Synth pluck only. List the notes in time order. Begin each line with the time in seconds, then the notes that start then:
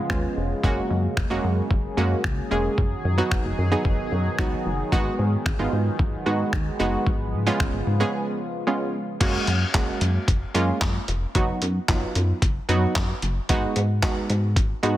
0.10 G#3 B3 C#4 F4
0.63 G#3 A#3 C#4 F#4
1.30 G#3 A#3 C#4 F#4
1.97 G#3 A#3 C#4 F#4
2.51 G#3 A#3 C#4 G#4
3.18 F#3 B3 D#4 F#4
3.71 F#3 B3 D#4 G#4
4.38 F#3 B3 D#4 F#4
4.92 G#3 B3 D#4 F#4
5.59 G#3 B3 D#4 F4
6.26 G#3 B3 D#4 F#4
6.79 G#3 B3 D#4 F#4
7.46 G#3 B3 C#4 F4
8.00 G#3 B3 C#4 G#4
8.67 G#3 B3 C#4 F4
9.20 G#3 A#3 C#4 F#4
9.74 G#3 A#3 C#4 F#4
10.54 G#3 A#3 C#4 F4
11.35 F#3 B3 D#4 F#4
11.88 F#3 B3 D#4 F4
12.69 F#3 B3 D#4 F#4
13.49 G#3 B3 D#4 F#4
14.03 G#3 B3 D#4 F#4
14.83 G#3 B3 D#4 F#4